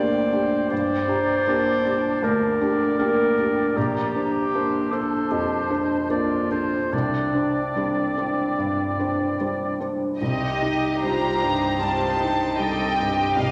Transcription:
Already playing: felt piano D2 A#3 D4 G4, oboe C5, clarinet D5, flute G5
0.32 felt piano D4 G4
0.70 felt piano G2, clarinet C5, oboe D5, flute G5
1.08 felt piano D4 G4, flute A#5
1.47 felt piano A#3 D4 G4, flute A5
1.84 felt piano D4 G4
2.22 felt piano D2, clarinet A#4, oboe D5
2.61 felt piano D4 G4
2.99 felt piano A#3 D4 G4, clarinet A#4, flute G5
3.38 felt piano D4 G4, flute G5
3.75 felt piano A#1, clarinet G4, flute A#5
4.15 felt piano D4 C5, flute A#5
4.53 felt piano A#3 D4 C5, oboe C5, flute A5
4.91 felt piano D4 C5, clarinet A4, oboe C5
5.31 felt piano F2, clarinet G4
5.70 felt piano D4 C5
6.10 felt piano A#3 D4 C5, clarinet F4, oboe D5
6.51 felt piano D4 C5, oboe C5
6.92 felt piano C2, clarinet D4, oboe D5, flute G5
7.34 felt piano D4 C5
7.75 felt piano G3 D4 C5, clarinet C4
8.17 felt piano D4 C5
8.58 felt piano G2
8.99 felt piano D4 C5
9.40 felt piano G3 D4 C5
9.80 felt piano D4 C5
10.19 double bass section C2, felt piano C2, viola section C4 D#4, violin section G4 D#5, cello section G4
10.61 viola section D#4, felt piano D#4
11.02 felt piano G3, viola section D4 F4, violin section G4 C5 A#5
11.43 felt piano G2, viola section D#4
11.80 felt piano G3, viola section C4 D#4, cello section F4, violin section C5 A5
12.20 viola section C4, cello section D#4, felt piano D#4
12.58 felt piano G3, cello section G4, violin section A4 D#5 G5
12.97 felt piano G2, violin section G4
13.34 felt piano C2, viola section C4 D#4, violin section G4 D#5 F5

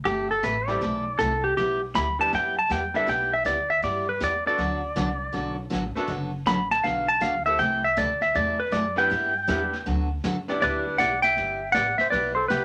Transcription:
0.05 upright bass G1, steel-string acoustic guitar C3 E3 A3 E4 A4, electric slide guitar G4, brush sweep, snare
0.31 electric slide guitar A4
0.43 upright bass A1, steel-string acoustic guitar C3 E3 A3 E4 A4, electric slide guitar B4, snare, hi-hat pedal
0.68 upright piano G3 A3 C4 E4 G4, electric slide guitar D5, snare
0.81 upright bass B1, steel-string acoustic guitar C3 E3 A3 E4 A4, brush sweep, snare
1.19 upright bass C2, steel-string acoustic guitar C3 E3 A3 E4 A4, electric slide guitar A4, snare, hi-hat pedal
1.44 electric slide guitar G4
1.57 upright bass B1, steel-string acoustic guitar G3 B3 E4 G4, electric slide guitar G4, brush sweep, snare
1.95 upright bass D2, steel-string acoustic guitar G3 B3 E4 G4, electric slide guitar B5, snare, hi-hat pedal
2.19 upright piano G3 B3 D4 E4 G4, electric slide guitar A5
2.33 upright bass F#2, steel-string acoustic guitar G3 B3 E4 G4, electric slide guitar G5, brush sweep, snare
2.59 electric slide guitar A5
2.69 upright bass E2, steel-string acoustic guitar G3 B3 E4 G4, electric slide guitar G5, snare, hi-hat pedal
2.94 upright piano G3 B3 D4 E4 A4, electric slide guitar E5, snare
3.07 upright bass B1, steel-string acoustic guitar G3 B3 E4 G4, electric slide guitar G5, brush sweep, snare
3.33 electric slide guitar E5
3.45 upright bass D2, steel-string acoustic guitar G3 B3 E4 G4, electric slide guitar D5, snare, hi-hat pedal
3.70 electric slide guitar E5
3.82 upright bass G2, steel-string acoustic guitar G3 B3 E4 G4, electric slide guitar D5, brush sweep, snare
4.09 electric slide guitar B4
4.20 upright bass E2, steel-string acoustic guitar G3 B3 E4 G4, electric slide guitar D5, snare, hi-hat pedal
4.46 upright piano A3 B3 D4 F#4 A4, electric slide guitar D5
4.58 upright bass D2, steel-string acoustic guitar D3 F#3 B3 F#4 A4, brush sweep, snare
4.96 upright bass C2, steel-string acoustic guitar D3 F#3 B3 F#4 A4, snare, hi-hat pedal
5.32 upright bass B1, steel-string acoustic guitar D3 F#3 B3 F#4 A4, brush sweep, snare
5.70 upright bass A1, steel-string acoustic guitar D3 F#3 B3 F#4 A4, snare, hi-hat pedal
5.95 upright piano A3 B3 D4 F#4 A4, muted upright bass stroke, snare
6.07 upright bass F#1, steel-string acoustic guitar D3 F#3 B3 F#4 A4, brush sweep, snare
6.46 upright bass A1, steel-string acoustic guitar D3 F#3 B3 F#4 A4, electric slide guitar B5, snare, hi-hat pedal
6.71 electric slide guitar A5, snare
6.84 upright bass B1, steel-string acoustic guitar D3 F#3 B3 F#4 A4, electric slide guitar F5, brush sweep, snare
7.08 electric slide guitar A5
7.20 upright bass D2, steel-string acoustic guitar D3 F#3 B3 F#4 A4, electric slide guitar F5, snare, hi-hat pedal
7.46 upright piano A3 C4 E4 G4 A4, electric slide guitar E5
7.58 upright bass C2, steel-string acoustic guitar C3 E3 A3 E4 A4, electric slide guitar G5, brush sweep, snare
7.84 electric slide guitar E5
7.97 upright bass D2, steel-string acoustic guitar C3 E3 A3 E4 A4, electric slide guitar D5, snare, hi-hat pedal
8.21 electric slide guitar E5, snare
8.35 upright bass E2, steel-string acoustic guitar C3 E3 A3 E4 A4, electric slide guitar D5, brush sweep, snare
8.60 electric slide guitar B4
8.72 upright bass F#2, steel-string acoustic guitar C3 E3 A3 E4 A4, electric slide guitar D5, snare, hi-hat pedal
8.96 upright piano B3 D4 E4 G4 B4, electric slide guitar G5, snare
9.10 upright bass G2, steel-string acoustic guitar G3 B3 E4 G4, brush sweep, snare
9.47 upright bass E2, steel-string acoustic guitar G3 B3 E4 G4, upright piano B3 D4 E4 G4 B4, snare, hi-hat pedal
9.73 snare
9.86 upright bass D2, steel-string acoustic guitar D3 F#3 B3 F#4 A4, brush sweep, snare
10.24 upright bass F#2, steel-string acoustic guitar D3 F#3 B3 F#4 A4, snare, hi-hat pedal
10.48 upright piano B3 D4 E4 G4 D5, snare
10.61 upright bass D2, steel-string acoustic guitar G3 B3 E4 G4, electric slide guitar B4 D5, brush sweep, snare
10.98 upright bass B1, steel-string acoustic guitar G3 B3 E4 G4, electric slide guitar D5 F#5, snare, hi-hat pedal
11.22 electric slide guitar E5 G5, snare
11.36 upright bass G1, steel-string acoustic guitar G3 B3 E4 G4, brush sweep, snare
11.72 upright bass A1, steel-string acoustic guitar G3 B3 E4 G4, electric slide guitar D5 F#5, snare, hi-hat pedal
11.98 electric slide guitar C5 E5, muted upright bass stroke, snare
12.10 upright bass B1, steel-string acoustic guitar G3 B3 E4 G4, electric slide guitar B4 D5, brush sweep, snare
12.35 electric slide guitar A4 C5
12.48 upright bass C2, steel-string acoustic guitar G3 B3 E4 G4, electric slide guitar G4 B4, snare, hi-hat pedal

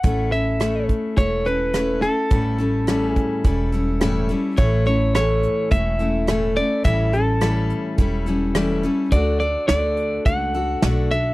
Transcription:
Already playing: clean electric guitar F#5
0.03 upright bass A1, steel-string acoustic guitar A3 C#4 E4 A4, kick, closed hi-hat
0.32 steel-string acoustic guitar C#4 E4 A4, clean electric guitar E5, closed hi-hat
0.60 steel-string acoustic guitar A3 C#4 E4 A4, cross-stick, closed hi-hat
0.89 kick, closed hi-hat
1.17 upright bass E1, steel-string acoustic guitar A3 C#4 E4 A4, clean electric guitar C#5, kick, closed hi-hat
1.45 steel-string acoustic guitar C#4 E4 A4, clean electric guitar B4, closed hi-hat
1.74 steel-string acoustic guitar A3 C#4 E4 A4, cross-stick, closed hi-hat
2.02 steel-string acoustic guitar C#4 E4 A4, clean electric guitar A4, closed hi-hat
2.30 upright bass A1, steel-string acoustic guitar A2 E3 G3 C#4 E4 A4, kick, closed hi-hat
2.58 steel-string acoustic guitar G3 C#4 E4 A4, closed hi-hat
2.87 steel-string acoustic guitar A2 E3 G3 C#4 E4 A4, cross-stick, closed hi-hat
3.09 clean electric guitar G#4
3.16 kick, closed hi-hat
3.44 upright bass E1, steel-string acoustic guitar G3 C#4 E4 A4, kick, closed hi-hat
3.72 steel-string acoustic guitar G3 C#4 E4 A4, closed hi-hat
4.01 steel-string acoustic guitar A2 E3 G3 C#4 E4 A4, cross-stick, closed hi-hat
4.29 steel-string acoustic guitar G3 C#4 E4 A4, closed hi-hat
4.57 upright bass A1, steel-string acoustic guitar A2 E3 A3 C#4 E4 A4, clean electric guitar C#5, kick, closed hi-hat
4.86 steel-string acoustic guitar A3 C#4 E4 A4, clean electric guitar C#5, closed hi-hat
5.15 steel-string acoustic guitar A2 E3 A3 C#4 E4 A4, clean electric guitar C#5, cross-stick, closed hi-hat
5.43 closed hi-hat
5.71 upright bass E1, steel-string acoustic guitar A3 C#4 E4 A4, clean electric guitar E5, kick, closed hi-hat
5.99 steel-string acoustic guitar A3 C#4 E4 A4, closed hi-hat
6.27 steel-string acoustic guitar A2 E3 A3 C#4 E4 A4, cross-stick, closed hi-hat
6.56 steel-string acoustic guitar A3 C#4 E4 A4, clean electric guitar D5, closed hi-hat
6.84 upright bass A1, steel-string acoustic guitar A2 E3 G3 C#4 E4 A4, clean electric guitar E5, kick, closed hi-hat
7.13 steel-string acoustic guitar G3 C#4 E4 A4, clean electric guitar A4, closed hi-hat
7.41 steel-string acoustic guitar A2 E3 G3 C#4 E4 A4, cross-stick, closed hi-hat
7.70 closed hi-hat
7.98 upright bass E1, steel-string acoustic guitar G3 C#4 E4 A4, kick, closed hi-hat
8.26 steel-string acoustic guitar G3 C#4 E4 A4, closed hi-hat
8.55 steel-string acoustic guitar A2 E3 G3 C#4 E4 A4, cross-stick, closed hi-hat
8.83 steel-string acoustic guitar G3 C#4 E4 A4, closed hi-hat
9.11 upright bass D2, steel-string acoustic guitar D3 A3 D4 F#4 A4, clean electric guitar D5, kick, closed hi-hat
9.40 steel-string acoustic guitar D4 F#4 A4, clean electric guitar D5, closed hi-hat
9.68 upright bass D2, steel-string acoustic guitar D3 A3 D4 F#4 A4, clean electric guitar D5, snare, closed hi-hat
9.97 closed hi-hat
10.25 upright bass C#2, steel-string acoustic guitar A3 D4 F#4 A4, clean electric guitar F#5, kick, closed hi-hat
10.54 steel-string acoustic guitar D4 F#4 A4, closed hi-hat
10.82 upright bass B1, steel-string acoustic guitar D3 A3 D4 F#4 A4, snare, closed hi-hat
11.11 steel-string acoustic guitar D4 F#4 A4, clean electric guitar E5, closed hi-hat

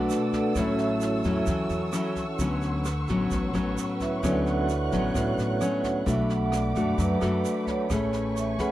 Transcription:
Already playing: nylon-string guitar B2 A3 D4 F#4, vibraphone D4 F#4 A4 B4 D5 F#5, violin section A4 F#5 D6 E6
0.10 snare, shaker
0.33 vibraphone D4 A4 B4 D5, kick, snare, shaker
0.55 upright bass A1, nylon-string guitar A2 F#3 C#4 E4, vibraphone C#4 F#4 A4 C#5, violin section F#5 C#6, kick, cross-stick, snare, shaker
0.78 vibraphone E4 A4 C#5 E5, snare, shaker
1.01 snare, shaker
1.24 upright bass E2, nylon-string guitar F#3 C#4 E4, kick, snare, shaker
1.46 upright bass E2, nylon-string guitar E3, kick, cross-stick, snare, shaker
1.69 upright bass E2, snare, shaker
1.93 nylon-string guitar F#3 C#4 E4, cross-stick, snare, shaker
2.16 kick, snare, shaker
2.39 upright bass D2, nylon-string guitar D3 F#3 B3 C#4, violin section B4, kick, snare, shaker
2.62 snare, shaker
2.85 cross-stick, snare, shaker
3.08 upright bass A1, nylon-string guitar F#3 B3 C#4, kick, snare, shaker
3.31 upright bass A1, nylon-string guitar A2, kick, snare, shaker
3.54 upright bass A1, nylon-string guitar F#3 B3 C#4, cross-stick, snare, shaker
3.77 snare, shaker
4.00 vibraphone E4 B4 C#5 E5, kick, snare, shaker
4.23 upright bass D2, nylon-string guitar D3 F#3 B3 C#4, vibraphone A4 B4 D5, violin section F#6, kick, cross-stick, snare, shaker
4.27 vibraphone D4
4.47 vibraphone F#4 C#5 D5 F#5, snare, shaker
4.69 snare, shaker
4.92 upright bass A1, nylon-string guitar F#3 B3 C#4, kick, snare, shaker
5.14 upright bass A1, nylon-string guitar A2, kick, cross-stick, snare, shaker
5.37 upright bass A1, vibraphone C#5, snare, shaker
5.61 nylon-string guitar F#3 B3 C#4, cross-stick, snare, shaker
5.84 kick, snare, shaker
6.06 upright bass B1, nylon-string guitar B2 A3 D4 F#4, violin section A3 B5 D6, vibraphone E5, kick, snare, shaker
6.29 vibraphone F#5, snare, shaker
6.52 vibraphone D5, cross-stick, snare, shaker
6.75 upright bass F#2, nylon-string guitar A3 D4 F#4, kick, snare, shaker
6.98 upright bass F#2, nylon-string guitar F#3, vibraphone B4, kick, snare, shaker
7.21 upright bass F#2, nylon-string guitar A3 D4 F#4, cross-stick, snare, shaker
7.44 snare, shaker
7.67 vibraphone C#5, kick, snare, shaker
7.90 upright bass A1, nylon-string guitar A3 C#4 G#4 B4, violin section G#5 C#6, kick, cross-stick, snare, shaker
8.13 snare, shaker
8.36 vibraphone E5, snare, shaker
8.58 upright bass E2, nylon-string guitar C#4 G#4 B4, vibraphone F#5, kick, snare, shaker

